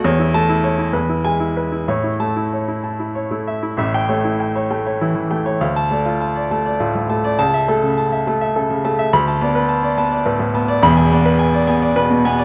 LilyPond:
<<
  \new Staff \with { instrumentName = "Grand piano" } { \time 6/8 \key a \major \tempo 4. = 68 << { r8 a''8 r4 gis''8 r8 | r8 a''8 r2 | r16 g''8 r2 r16 | r16 a''8 r2 r16 |
a''8 r2 r8 | b''8 r2 r8 | b''8 r2 r8 | } \\ { cis''16 e'8 e'16 cis''16 e'16 b'16 e'8 e'16 b'16 e'16 | cis''16 e'8 e'16 cis''16 e'16 a''16 e'16 cis''16 e'16 e''16 e'16 | e''8 cis''16 e'16 g''16 cis''16 g''16 cis''16 e'16 e16 g''16 cis''16 | f''8 d''16 f'16 a''16 d''16 a''16 d''16 f'16 a,16 a''16 d''16 |
r16 e''16 a'16 cis16 a''16 e''16 a''16 e''16 a'16 cis16 a''16 e''16 | r16 a''16 d''16 b'16 a''16 d''16 a''16 d''16 b'16 a,16 a''16 d''16 | r16 gis''16 d''16 b'16 gis''16 d''16 gis''16 d''16 b'16 b,16 gis''16 d''16 | } >> }
  \new Staff \with { instrumentName = "Grand piano" } { \time 6/8 \key a \major e,8 a8 r8 e,8 gis8 r8 | a,8 a8 r4 r16 a8 r16 | <a,, a,>8 a8. r16 a8 e8 a8 | d,8 a8. r16 a8 a,8 a8 |
cis,8 a8. r16 a8 cis8 a8 | d,8 b8. r16 b8 a,8 b8 | <e,, e,>8 b8. r16 b8 b,8 b8 | }
>>